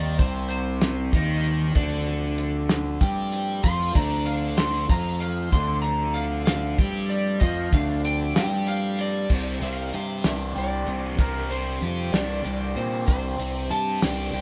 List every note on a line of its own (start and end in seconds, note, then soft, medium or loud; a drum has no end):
0.00 0.17 D#2 medium
0.00 0.18 D#3 medium
0.00 1.72 G3 medium
0.00 9.26 C4 medium
0.00 0.19 D#4 medium
0.00 1.73 C5 medium
0.00 0.18 D5 loud
0.18 1.09 C2 medium
0.18 1.12 C3 medium
0.18 1.13 C4 medium
0.18 0.47 C5 medium
0.18 kick loud
0.18 closed hi-hat medium
0.49 1.71 C5 medium
0.49 closed hi-hat medium
0.81 snare loud
0.81 closed hi-hat medium
1.13 1.72 D#2 medium
1.13 1.75 D#3 medium
1.13 1.75 D#4 loud
1.13 kick loud
1.13 closed hi-hat medium
1.44 closed hi-hat medium
1.75 2.97 D2 medium
1.75 3.00 D3 medium
1.75 9.26 F3 medium
1.75 9.26 A3 medium
1.75 3.01 D4 medium
1.75 kick loud
1.75 closed hi-hat medium
1.75 tambourine medium
2.07 closed hi-hat medium
2.38 closed hi-hat medium
2.38 tambourine medium
2.69 snare loud
2.69 closed hi-hat loud
2.69 tambourine soft
2.85 tambourine soft
3.00 3.60 G2 medium
3.00 3.63 G3 medium
3.00 3.63 G4 loud
3.00 kick loud
3.00 closed hi-hat medium
3.00 tambourine medium
3.32 closed hi-hat medium
3.32 tambourine soft
3.48 tambourine soft
3.63 3.93 F2 medium
3.63 3.94 F3 medium
3.63 3.95 F4 loud
3.63 3.94 C6 loud
3.63 kick medium
3.63 closed hi-hat medium
3.63 tambourine loud
3.95 4.86 D2 medium
3.95 4.88 D3 medium
3.95 4.89 D4 loud
3.95 4.26 A#5 medium
3.95 kick loud
3.95 closed hi-hat medium
4.26 4.57 F5 medium
4.26 closed hi-hat medium
4.26 tambourine medium
4.57 4.88 C6 medium
4.57 snare loud
4.57 closed hi-hat loud
4.57 tambourine soft
4.73 tambourine soft
4.89 5.49 F2 medium
4.89 5.51 F3 medium
4.89 5.52 F4 medium
4.89 5.20 A#5 medium
4.89 kick loud
4.89 closed hi-hat medium
4.89 tambourine medium
5.20 5.51 F5 medium
5.20 closed hi-hat medium
5.20 tambourine soft
5.37 tambourine soft
5.52 6.74 D2 medium
5.52 6.77 D3 medium
5.52 6.77 D4 loud
5.52 5.81 C6 loud
5.52 kick loud
5.52 closed hi-hat medium
5.52 tambourine loud
5.82 6.13 A#5 medium
5.82 closed hi-hat medium
6.14 6.44 F5 loud
6.14 closed hi-hat medium
6.14 tambourine medium
6.45 6.77 F5 loud
6.45 snare loud
6.45 closed hi-hat loud
6.45 tambourine soft
6.63 tambourine soft
6.78 7.37 G2 loud
6.78 7.40 G3 medium
6.78 7.41 G4 medium
6.78 kick loud
6.78 closed hi-hat medium
6.78 tambourine medium
7.09 7.40 D5 medium
7.09 closed hi-hat medium
7.09 tambourine soft
7.26 tambourine soft
7.40 7.70 F2 medium
7.40 7.72 F3 medium
7.40 7.72 F4 medium
7.40 7.71 D#5 loud
7.40 kick loud
7.40 closed hi-hat medium
7.40 tambourine loud
7.73 8.31 D2 medium
7.73 8.35 D3 medium
7.73 8.35 D4 loud
7.73 8.04 F5 medium
7.73 kick loud
7.73 closed hi-hat medium
7.89 tambourine soft
8.04 8.66 G5 loud
8.04 closed hi-hat medium
8.04 tambourine loud
8.36 9.26 G2 loud
8.36 9.29 G3 medium
8.36 9.29 G4 loud
8.36 snare loud
8.36 closed hi-hat loud
8.67 9.28 F5 loud
8.67 closed hi-hat medium
8.67 tambourine loud
8.99 9.64 D5 medium
8.99 closed hi-hat medium
9.30 9.59 C2 medium
9.30 11.18 C3 medium
9.30 14.41 G3 medium
9.30 14.41 C4 medium
9.30 14.41 D4 medium
9.30 14.41 C5 medium
9.30 kick loud
9.30 crash loud
9.30 tambourine medium
9.61 9.90 C2 medium
9.61 10.86 C4 medium
9.61 10.09 F5 medium
9.61 closed hi-hat medium
9.93 10.22 G2 medium
9.93 10.55 G4 medium
9.93 closed hi-hat medium
10.09 10.26 E5 medium
10.09 tambourine soft
10.24 10.53 C2 medium
10.24 12.13 D4 medium
10.24 10.34 E5 medium
10.24 snare loud
10.24 closed hi-hat medium
10.40 tambourine soft
10.55 10.85 C2 medium
10.55 11.81 G4 medium
10.55 11.22 D5 medium
10.55 closed hi-hat medium
10.55 tambourine medium
10.87 11.16 C2 medium
10.87 11.49 C4 medium
10.87 closed hi-hat medium
10.87 tambourine soft
11.18 11.78 C2 medium
11.18 13.06 C3 medium
11.18 11.49 A#4 medium
11.18 kick loud
11.18 closed hi-hat medium
11.18 tambourine medium
11.49 12.75 C4 medium
11.49 12.15 C5 medium
11.49 closed hi-hat medium
11.81 12.10 F2 medium
11.81 12.44 G4 medium
11.81 closed hi-hat medium
11.81 tambourine medium
11.96 tambourine soft
12.12 12.41 C2 medium
12.12 14.01 D4 medium
12.12 12.78 D5 medium
12.12 snare loud
12.12 closed hi-hat medium
12.28 tambourine soft
12.44 12.74 C2 medium
12.44 13.70 G4 medium
12.44 closed hi-hat medium
12.44 tambourine medium
12.75 13.05 A#2 medium
12.75 13.38 C4 medium
12.75 13.06 C5 medium
12.75 closed hi-hat medium
12.75 tambourine soft
13.07 13.37 C2 medium
13.07 14.41 C3 medium
13.07 13.72 C5 loud
13.07 kick loud
13.07 closed hi-hat medium
13.07 tambourine medium
13.38 13.68 C2 medium
13.38 14.41 C4 medium
13.38 closed hi-hat medium
13.70 13.99 G2 medium
13.70 14.32 G4 medium
13.70 14.03 A5 medium
13.70 closed hi-hat medium
13.70 tambourine medium
13.86 tambourine soft
14.01 14.31 C2 medium
14.01 14.41 D4 medium
14.01 14.41 G5 loud
14.01 snare loud
14.01 closed hi-hat loud
14.18 tambourine soft
14.33 14.41 C2 medium
14.33 14.41 G4 medium
14.33 closed hi-hat medium
14.33 tambourine medium